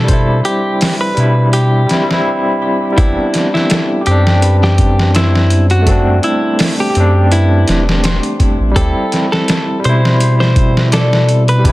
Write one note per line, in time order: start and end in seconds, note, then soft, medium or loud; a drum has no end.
0.00 0.42 B2 medium
0.00 0.04 G3 medium
0.00 1.10 G3 medium
0.00 1.17 D4 medium
0.00 0.13 E4 loud
0.00 0.40 A4 medium
0.08 1.13 C5 medium
0.08 kick loud
0.08 closed hi-hat medium
0.13 1.15 E4 loud
0.45 0.95 G4 medium
0.45 closed hi-hat medium
0.81 snare loud
0.81 open hi-hat medium
1.01 1.48 B4 medium
1.15 1.86 B2 medium
1.15 1.85 G3 loud
1.15 1.86 D4 medium
1.15 closed hi-hat medium
1.20 1.87 E4 loud
1.53 2.03 G4 medium
1.53 closed hi-hat medium
1.86 2.02 G3 medium
1.86 2.04 C4 medium
1.86 closed hi-hat medium
1.91 2.05 E4 medium
1.91 snare medium
2.03 2.91 G3 medium
2.08 2.93 C4 medium
2.08 snare medium
2.13 2.96 E4 loud
2.93 4.00 G3 medium
2.93 4.01 B3 medium
2.97 3.15 A1 loud
2.97 4.03 C4 medium
2.97 3.47 E4 loud
2.97 5.32 G4 loud
2.97 kick loud
2.97 closed hi-hat medium
3.02 4.04 D4 loud
3.34 snare soft
3.34 closed hi-hat medium
3.54 4.01 E4 medium
3.54 snare soft
3.70 5.86 A4 medium
3.70 snare loud
3.70 closed hi-hat medium
4.01 5.80 G4 medium
4.06 6.20 F#2 medium
4.06 5.84 C4 medium
4.06 4.56 G4 medium
4.06 closed hi-hat medium
4.11 5.85 D4 loud
4.27 snare medium
4.42 5.21 B4 medium
4.42 closed hi-hat medium
4.63 5.10 G4 medium
4.63 snare soft
4.78 kick medium
4.78 closed hi-hat medium
4.99 snare soft
5.14 5.65 E4 loud
5.14 7.12 C5 medium
5.14 snare loud
5.14 closed hi-hat medium
5.35 snare medium
5.50 closed hi-hat medium
5.70 6.18 F#4 medium
5.70 closed hi-hat soft
5.82 6.89 A3 loud
5.87 6.92 C4 medium
5.87 6.59 A4 loud
5.87 kick loud
5.87 closed hi-hat medium
5.91 6.94 D4 loud
6.23 6.73 E4 medium
6.23 closed hi-hat medium
6.59 8.79 A4 medium
6.59 snare loud
6.59 open hi-hat medium
6.80 7.27 G4 medium
6.90 8.69 G4 loud
6.95 7.65 F#2 medium
6.95 8.73 C4 medium
6.95 closed hi-hat medium
7.00 8.74 D4 loud
7.31 7.82 E4 medium
7.31 8.09 B4 medium
7.31 closed hi-hat loud
7.68 8.20 E1 medium
7.68 snare medium
7.68 closed hi-hat medium
7.89 snare medium
8.03 10.01 C5 medium
8.03 snare loud
8.03 closed hi-hat medium
8.23 closed hi-hat soft
8.40 kick medium
8.40 closed hi-hat medium
8.60 8.74 A1 medium
8.71 9.78 G3 loud
8.76 8.93 D2 loud
8.76 9.80 C4 medium
8.76 11.11 G4 loud
8.76 9.26 A4 loud
8.76 kick loud
8.76 closed hi-hat medium
8.81 9.83 E4 loud
9.12 snare soft
9.12 closed hi-hat medium
9.32 9.80 A4 loud
9.32 snare soft
9.48 11.68 A4 medium
9.48 snare loud
9.48 closed hi-hat medium
9.79 11.58 G3 medium
9.84 11.72 B2 medium
9.84 11.61 C5 medium
9.84 10.35 C5 medium
9.84 closed hi-hat medium
9.89 11.63 E4 loud
10.05 snare medium
10.20 11.72 C5 medium
10.20 closed hi-hat medium
10.40 10.88 C5 medium
10.40 snare soft
10.56 kick medium
10.56 closed hi-hat medium
10.77 snare soft
10.92 11.43 A4 medium
10.92 11.72 D5 medium
10.92 snare loud
10.92 closed hi-hat medium
11.13 snare medium
11.29 closed hi-hat medium
11.48 11.72 B4 medium
11.48 closed hi-hat soft
11.59 11.72 G3 medium
11.64 11.72 D4 medium
11.64 11.72 G4 loud
11.64 kick loud
11.64 closed hi-hat medium
11.69 11.72 E4 loud